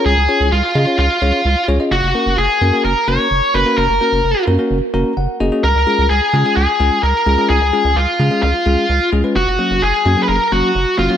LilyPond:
<<
  \new Staff \with { instrumentName = "Lead electric guitar" } { \time 4/4 \key des \major \tempo 4 = 129 aes'4 f'4 f'4. r8 | ges'4 aes'4 bes'8 des''4 ces''8 | bes'4. r2 r8 | bes'4 aes'4 aes'4 bes'4 |
aes'4 f'4 f'4. r8 | ges'4 aes'8.~ aes'32 ces''32 bes'8 ges'4 f'8 | }
  \new Staff \with { instrumentName = "Tine electric piano" } { \time 4/4 \key des \major << { r1 | r1 | r2 r8 bes''8 ges''8 ees''8 | r1 |
r1 | r1 | } \\ { <des' f' aes' des''>16 r16 <des' f' aes' des''>8 r8 <des' f' aes' ees''>16 <des' f' aes' des''>8 r16 <des' f' aes' des''>8 r8 <des' f' aes' des''>16 <des' f' aes' ees''>16 | r8 <bes des' ges' bes'>8 r8 <bes des' ges' bes'>16 <bes des' ges' bes'>8 r16 <bes des' ges' bes'>8 r8 <bes des' ges' bes'>16 <bes des' ges' bes'>16~ | <bes des' ges' bes'>16 r16 <bes des' ges' bes'>8 r8 <bes des' ges' bes'>16 <bes des' ges' bes'>8 r16 <bes des' ges' bes'>8 r8 <bes des' ges' aes'>16 <bes des' ges' aes'>16 | r8 <aes des' f' aes'>8 r8 <aes des' f' aes'>16 <aes des' f' aes'>8 r16 <aes des' f' aes'>8 r8 <aes des' f' aes'>16 <aes des' f' aes'>16~ |
<aes des' f' aes'>16 r16 <aes des' f' aes'>8 r8 <aes des' f' aes'>16 <aes des' f' aes'>8 r16 <aes des' f' aes'>8 r8 <aes des' f' aes'>16 <aes des' f' ces''>16 | r8 <ges bes des' ges'>8 r8 <ges bes des' ges'>16 <ges bes des' aes'>8 r16 <ges bes des' ges'>8 r8 <ges bes des' ges'>16 <ges bes des' ges'>16 | } >> }
  \new Staff \with { instrumentName = "Analog synth bass" } { \clef bass \time 4/4 \key des \major des,16 des,16 r16 des,16 des,16 r16 des16 r16 des,16 r16 des,16 r16 des,16 r16 des,16 r16 | ges,,16 ges,,16 r16 ges,,16 ges,,16 r16 ges,16 r16 ges,,16 r16 ges,,16 r16 ges,,16 r16 ges,,16 r16 | ges,,16 ges,,16 r16 ges,,16 ges,,16 r16 ges,16 r16 ges,,16 r16 ges,,16 r16 ges,,16 r16 ges,,16 r16 | des,16 des,16 r16 des,16 des,16 r16 des16 r16 des,16 r16 des,16 r16 des,16 r16 des,16 r16 |
des,16 des,16 r16 des,16 des,16 r16 des16 r16 des,16 r16 des,16 r16 des,16 r16 des,16 r16 | ges,,16 ges,,16 r16 ges,,16 ges,,16 r16 ges,16 r16 ges,,16 r16 ges,,16 r16 ges,,16 r16 ges,,16 r16 | }
>>